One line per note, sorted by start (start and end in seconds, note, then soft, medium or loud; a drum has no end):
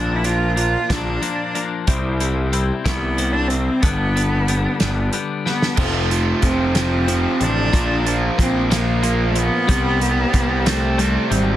0.00 0.75 A#1 medium
0.00 0.24 A#2 medium
0.00 0.24 F3 medium
0.00 0.24 A#3 medium
0.00 0.17 D4 medium
0.00 0.23 D4 medium
0.16 0.26 E4 medium
0.24 0.55 A#2 medium
0.24 0.55 F3 medium
0.24 0.56 A#3 medium
0.24 0.56 D4 medium
0.24 0.57 F4 medium
0.24 closed hi-hat medium
0.56 0.89 A#2 medium
0.56 0.88 F3 medium
0.56 0.88 A#3 medium
0.56 0.88 D4 medium
0.56 0.93 F4 medium
0.56 closed hi-hat medium
0.89 1.18 A#1 medium
0.89 1.20 A#2 medium
0.89 1.20 F3 medium
0.89 1.21 A#3 medium
0.89 1.22 D4 medium
0.89 1.64 D4 medium
0.89 kick medium
0.89 snare loud
0.89 closed hi-hat medium
1.21 1.54 A#2 medium
1.21 1.54 F3 medium
1.21 1.54 A#3 medium
1.21 1.53 D4 medium
1.21 closed hi-hat medium
1.55 1.87 A#2 medium
1.55 1.87 F3 medium
1.55 1.88 A#3 medium
1.55 1.87 D4 medium
1.55 closed hi-hat medium
1.87 2.70 C2 medium
1.87 2.20 C3 medium
1.87 2.20 G3 medium
1.87 2.20 C4 medium
1.87 2.19 E4 medium
1.87 kick medium
1.87 closed hi-hat medium
2.20 2.51 C3 medium
2.20 2.51 G3 medium
2.20 2.52 C4 medium
2.20 2.52 E4 medium
2.20 closed hi-hat medium
2.52 2.85 C3 medium
2.52 2.84 G3 medium
2.52 2.85 C4 medium
2.52 2.83 E4 medium
2.52 closed hi-hat medium
2.84 3.68 C2 medium
2.84 3.17 G3 medium
2.84 3.34 B3 medium
2.84 3.17 E4 medium
2.84 kick medium
2.84 snare loud
2.84 closed hi-hat medium
3.17 3.50 C3 medium
3.17 3.50 G3 medium
3.17 3.49 C4 medium
3.17 3.49 E4 medium
3.17 closed hi-hat medium
3.33 3.49 D4 medium
3.48 3.82 C3 medium
3.48 3.82 G3 medium
3.48 3.82 C4 medium
3.48 3.83 C4 medium
3.48 3.83 E4 medium
3.48 closed hi-hat medium
3.81 4.66 G1 medium
3.81 4.15 D3 medium
3.81 4.16 G3 medium
3.81 5.12 B3 medium
3.81 4.15 B3 medium
3.81 4.14 D4 medium
3.81 kick medium
3.81 closed hi-hat medium
4.16 4.47 D3 medium
4.16 4.47 G3 medium
4.16 4.48 B3 medium
4.16 4.48 D4 medium
4.16 closed hi-hat medium
4.48 4.80 D3 medium
4.48 4.80 G3 medium
4.48 4.80 B3 medium
4.48 4.80 D4 medium
4.48 closed hi-hat medium
4.80 5.08 G1 medium
4.80 5.12 D3 medium
4.80 5.12 G3 medium
4.80 5.12 B3 medium
4.80 5.13 D4 medium
4.80 snare loud
4.80 closed hi-hat medium
5.13 5.46 D3 medium
5.13 5.45 G3 medium
5.13 5.45 B3 medium
5.13 5.44 D4 medium
5.13 closed hi-hat medium
5.45 5.78 D3 medium
5.45 5.79 G3 medium
5.45 5.78 B3 medium
5.45 5.77 B3 medium
5.45 5.78 D4 medium
5.45 snare soft
5.62 snare medium
5.77 6.33 F1 medium
5.77 6.09 F2 medium
5.77 6.09 C3 medium
5.77 6.09 F3 medium
5.77 6.46 A3 medium
5.77 kick medium
5.77 crash loud
6.11 6.40 F2 medium
6.11 6.40 C3 medium
6.11 6.43 F3 medium
6.11 closed hi-hat medium
6.42 7.25 F1 medium
6.42 6.72 F2 medium
6.42 6.72 C3 medium
6.42 6.74 F3 medium
6.42 7.44 C4 medium
6.42 kick medium
6.42 closed hi-hat medium
6.75 7.05 F2 medium
6.75 7.05 C3 medium
6.75 7.07 F3 medium
6.75 snare medium
6.75 closed hi-hat medium
7.08 7.37 F2 medium
7.08 7.38 C3 medium
7.08 7.71 F3 medium
7.08 closed hi-hat medium
7.41 7.68 A1 medium
7.41 7.70 F2 medium
7.41 7.70 C3 medium
7.41 8.07 D4 medium
7.41 closed hi-hat medium
7.73 8.29 A#1 medium
7.73 8.04 A#2 medium
7.73 8.04 F3 medium
7.73 8.05 A#3 medium
7.73 kick loud
7.73 closed hi-hat medium
8.06 8.35 A#2 medium
8.06 8.35 F3 medium
8.06 8.38 A#3 medium
8.06 closed hi-hat medium
8.38 9.49 A#1 medium
8.38 8.68 A#2 medium
8.38 8.68 F3 medium
8.38 8.70 A#3 medium
8.38 8.70 C4 medium
8.38 kick medium
8.38 closed hi-hat medium
8.71 9.00 A#2 medium
8.71 9.00 F3 medium
8.71 9.03 A#3 medium
8.71 9.31 A#3 medium
8.71 snare loud
8.71 closed hi-hat medium
9.03 9.32 A#2 medium
9.03 9.33 F3 medium
9.03 9.67 A#3 medium
9.03 closed hi-hat medium
9.29 9.39 A3 medium
9.35 9.65 A#2 medium
9.35 9.66 F3 medium
9.35 10.68 B3 loud
9.35 closed hi-hat medium
9.68 10.24 C2 medium
9.68 9.99 C3 medium
9.68 9.99 G3 loud
9.68 10.01 C4 medium
9.68 kick loud
9.68 closed hi-hat medium
10.00 10.30 C3 medium
10.00 10.30 G3 medium
10.00 10.33 C4 medium
10.00 closed hi-hat medium
10.33 11.16 C2 medium
10.33 10.63 C3 medium
10.33 10.63 G3 medium
10.33 10.65 C4 medium
10.33 kick medium
10.33 closed hi-hat medium
10.66 10.96 C3 medium
10.66 10.96 G3 medium
10.66 11.30 A3 medium
10.66 10.99 C4 loud
10.66 snare loud
10.66 closed hi-hat medium
10.98 11.28 C3 medium
10.98 11.28 G3 medium
10.98 11.57 C4 medium
10.98 closed hi-hat medium
11.30 11.57 G#1 medium
11.30 11.57 C3 medium
11.30 11.46 G3 medium
11.30 11.57 G3 medium
11.30 closed hi-hat medium